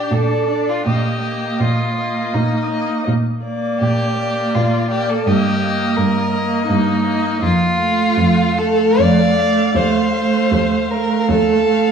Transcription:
Already playing: viola D4, violin G4 D5
0.11 cello A#2, violin A4
0.50 viola D4, violin D5
0.69 violin F4
0.86 cello A#2, viola A#3, violin G4 D#5
1.23 viola A#3, violin D#5
1.60 cello A#2, violin F4
1.97 viola A#3, violin D#5
2.34 cello A#2, violin D#4
2.71 viola A#3, violin D#5
3.07 cello A#2
3.44 viola A#3, violin D5
3.80 cello A#2, violin G4
4.17 viola A#3, violin D5
4.55 cello A#2, violin F4
4.90 viola A#3, violin G4 D5
5.09 violin A4
5.26 cello G2, viola A#3, violin G4 D#5
5.61 viola A#3, violin D#5
5.96 cello G2, violin A#4
6.32 viola A#3, violin D#5
6.67 cello G2, violin D#4
7.04 viola A#3, violin D#5
7.42 cello F2, violin F4
7.78 viola A3, violin F5
8.16 cello F2
8.56 viola A3, violin A4 F5
8.99 cello F2, violin D5
9.37 viola A3, violin F5
9.74 cello D#2, viola A3, violin C5 F5
10.14 viola A3, violin F5
10.52 cello D#2
10.91 viola A3, violin A#4 F5
11.29 cello D#2, violin A4
11.67 viola A3, violin F5

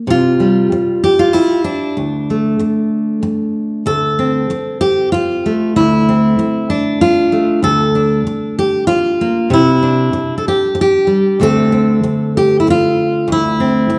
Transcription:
0.07 steel-string acoustic guitar C3 F4
0.40 steel-string acoustic guitar G3
0.72 muted steel-string acoustic guitar stroke
1.04 steel-string acoustic guitar G4
1.19 steel-string acoustic guitar F4
1.33 steel-string acoustic guitar E4, muted steel-string acoustic guitar stroke
1.64 steel-string acoustic guitar D4
1.97 steel-string acoustic guitar D2
2.30 steel-string acoustic guitar A3
2.59 muted steel-string acoustic guitar stroke
3.23 muted steel-string acoustic guitar stroke
3.86 steel-string acoustic guitar D2 A4
4.19 steel-string acoustic guitar C4
4.50 muted steel-string acoustic guitar stroke
4.81 steel-string acoustic guitar G4
5.12 steel-string acoustic guitar F4, muted steel-string acoustic guitar stroke
5.46 steel-string acoustic guitar A3
5.76 steel-string acoustic guitar D2 E4
6.09 steel-string acoustic guitar C4
6.39 muted steel-string acoustic guitar stroke
6.70 steel-string acoustic guitar D4
7.01 steel-string acoustic guitar F4, muted steel-string acoustic guitar stroke
7.32 steel-string acoustic guitar A3
7.63 steel-string acoustic guitar D2 A4
7.95 steel-string acoustic guitar D4
8.27 muted steel-string acoustic guitar stroke
8.59 steel-string acoustic guitar G4
8.87 steel-string acoustic guitar F4, muted steel-string acoustic guitar stroke
9.21 steel-string acoustic guitar A#3
9.50 steel-string acoustic guitar C3 E4
9.83 steel-string acoustic guitar D4
10.13 muted steel-string acoustic guitar stroke
10.38 steel-string acoustic guitar A4
10.48 steel-string acoustic guitar G4
10.75 muted steel-string acoustic guitar stroke
10.81 steel-string acoustic guitar G4
11.07 steel-string acoustic guitar G3
11.40 steel-string acoustic guitar D2 D3 A3 C4 A4
11.72 steel-string acoustic guitar C4
12.03 muted steel-string acoustic guitar stroke
12.37 steel-string acoustic guitar G4
12.60 steel-string acoustic guitar E4
12.67 steel-string acoustic guitar F4, muted steel-string acoustic guitar stroke
13.28 steel-string acoustic guitar D2
13.32 steel-string acoustic guitar E4
13.60 steel-string acoustic guitar C4
13.90 muted steel-string acoustic guitar stroke

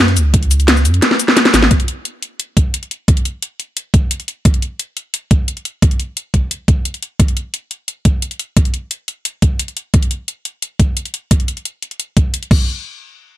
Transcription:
Already playing: sub bass F#2
0.08 closed hi-hat
0.17 sub bass C#2, closed hi-hat, cabasa
0.34 kick, closed hi-hat
0.43 closed hi-hat
0.51 closed hi-hat, cabasa
0.60 closed hi-hat, cabasa
0.68 snare, closed hi-hat
0.77 cabasa
0.85 sub bass F#2, closed hi-hat, cabasa
0.94 closed hi-hat
1.02 snare, closed hi-hat
1.11 snare
1.20 closed hi-hat, cabasa
1.28 snare
1.37 snare, closed hi-hat
1.45 snare, closed hi-hat
1.54 sub bass G#1, snare, closed hi-hat, cabasa
1.63 snare
1.71 kick, closed hi-hat
1.80 closed hi-hat
1.88 closed hi-hat
2.05 closed hi-hat
2.22 closed hi-hat
2.40 closed hi-hat
2.57 kick, closed hi-hat
2.74 closed hi-hat
2.83 closed hi-hat
2.91 closed hi-hat
3.08 kick, closed hi-hat
3.17 closed hi-hat
3.25 closed hi-hat
3.42 closed hi-hat
3.60 closed hi-hat
3.77 closed hi-hat
3.94 kick, closed hi-hat
4.11 closed hi-hat
4.20 closed hi-hat
4.28 closed hi-hat
4.45 kick, closed hi-hat
4.54 closed hi-hat
4.62 closed hi-hat
4.79 closed hi-hat
4.97 closed hi-hat
5.14 closed hi-hat
5.31 kick, closed hi-hat
5.48 closed hi-hat
5.57 closed hi-hat
5.65 closed hi-hat
5.82 kick, closed hi-hat
5.91 closed hi-hat
6.00 closed hi-hat
6.17 closed hi-hat
6.34 kick, closed hi-hat
6.51 closed hi-hat
6.68 kick, closed hi-hat
6.85 closed hi-hat
6.94 closed hi-hat
7.03 closed hi-hat
7.20 kick, closed hi-hat
7.28 closed hi-hat
7.37 closed hi-hat
7.54 closed hi-hat
7.71 closed hi-hat
7.88 closed hi-hat
8.05 kick, closed hi-hat
8.22 closed hi-hat
8.31 closed hi-hat
8.39 closed hi-hat
8.57 kick, closed hi-hat
8.65 closed hi-hat
8.74 closed hi-hat
8.91 closed hi-hat
9.08 closed hi-hat
9.25 closed hi-hat
9.42 kick, closed hi-hat
9.59 closed hi-hat
9.68 closed hi-hat
9.77 closed hi-hat
9.94 kick, closed hi-hat
10.03 closed hi-hat
10.11 closed hi-hat
10.28 closed hi-hat
10.45 closed hi-hat
10.62 closed hi-hat
10.80 kick, closed hi-hat
10.97 closed hi-hat
11.05 closed hi-hat
11.14 closed hi-hat
11.31 kick, closed hi-hat
11.40 closed hi-hat
11.48 closed hi-hat
11.57 closed hi-hat
11.65 closed hi-hat
11.82 closed hi-hat
11.91 closed hi-hat
12.00 closed hi-hat
12.17 kick, closed hi-hat
12.34 closed hi-hat
12.43 closed hi-hat
12.51 kick, crash

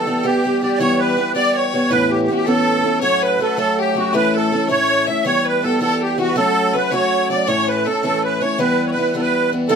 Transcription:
Already playing: fiddle A4, accordion A4
0.06 steel-string acoustic guitar E3 G3 B3 G4
0.23 steel-string acoustic guitar E3 G3 B3 G4, fiddle G4, accordion G4
0.44 steel-string acoustic guitar E3 G3 B3 G4
0.61 steel-string acoustic guitar E3 G3 B3 G4, fiddle G4, accordion G4 D5
0.74 accordion D5
0.79 steel-string acoustic guitar E3 G3 B3 G4, accordion C#5, fiddle C#5
0.99 accordion B4, fiddle B4
1.17 steel-string acoustic guitar E3 G3 B3 G4
1.35 steel-string acoustic guitar E3 G3 B3 G4, fiddle D5, accordion D5
1.55 fiddle C#5, accordion C#5
1.72 steel-string acoustic guitar E3 G3 B3 G4, accordion C#5
1.91 steel-string acoustic guitar A2 E3 B3 C#4 E4, fiddle B4, accordion B4
2.10 fiddle G4, accordion G4
2.22 accordion G4
2.28 steel-string acoustic guitar E3 B3 C#4 E4, fiddle F#4
2.34 fiddle G4, accordion G4
2.46 steel-string acoustic guitar A2 E3 B3 C#4 E4, fiddle A4, accordion A4
2.84 steel-string acoustic guitar E3 B3 C#4 E4
3.01 steel-string acoustic guitar A2 F#3 A3 C#4 F#4, fiddle C#5, accordion C#5
3.22 fiddle B4, accordion B4
3.39 steel-string acoustic guitar F#3 A3 C#4 F#4, accordion A4
3.57 steel-string acoustic guitar A2 F#3 A3 C#4 F#4, accordion A4, fiddle A4
3.79 fiddle G4, accordion G4
3.95 steel-string acoustic guitar F#3 A3 C#4 F#4, accordion F#4
4.13 steel-string acoustic guitar A2 E3 A3 C#4 E4, fiddle B4, accordion B4
4.34 fiddle A4, accordion A4
4.51 steel-string acoustic guitar E3 A3 C#4 E4
4.68 steel-string acoustic guitar A2 E3 A3 C#4 E4, fiddle C#5, accordion C#5
5.07 steel-string acoustic guitar E3 A3 C#4 E4, fiddle E5, accordion E5
5.25 steel-string acoustic guitar E3 G3 B3 G4, fiddle C#5, accordion C#5
5.45 fiddle B4, accordion B4
5.62 steel-string acoustic guitar E3 G3 B3 G4, fiddle A4, accordion A4
5.80 steel-string acoustic guitar E3 G3 B3 G4, fiddle A4, accordion A4
5.97 fiddle A4
6.01 fiddle G4, accordion G4
6.18 steel-string acoustic guitar E3 G3 B3 G4, fiddle F#4, accordion F#4
6.30 fiddle B4
6.36 steel-string acoustic guitar F#3 A3 C#4 F#4, fiddle A4, accordion A4
6.73 steel-string acoustic guitar F#3 A3 C#4 F#4, fiddle B4, accordion B4
6.91 steel-string acoustic guitar F#3 A3 C#4 F#4, fiddle C#5, accordion C#5
7.30 steel-string acoustic guitar F#3 A3 C#4 F#4, fiddle D5, accordion D5
7.43 steel-string acoustic guitar A2, accordion D5
7.47 steel-string acoustic guitar E3 A3 C#4 E4, fiddle C#5, accordion C#5
7.68 fiddle B4, accordion B4
7.85 steel-string acoustic guitar E3 A3 C#4 E4, fiddle A4, accordion A4
8.03 steel-string acoustic guitar A2 E3 A3 C#4 E4, fiddle A4, accordion A4
8.24 fiddle B4, accordion B4
8.41 steel-string acoustic guitar E3 A3 C#4 E4, fiddle C#5, accordion C#5
8.58 steel-string acoustic guitar E3 G3 B3 E4, fiddle B4, accordion B4
8.86 accordion C#5
8.91 fiddle B4, accordion B4
8.96 steel-string acoustic guitar E3 G3 B3 E4
9.14 steel-string acoustic guitar E3 G3 B3 E4, accordion A4
9.21 fiddle B4, accordion B4
9.52 steel-string acoustic guitar E3 G3 B3 E4
9.69 steel-string acoustic guitar E3 G3 B3 E4, fiddle A4, accordion A4, harp A4

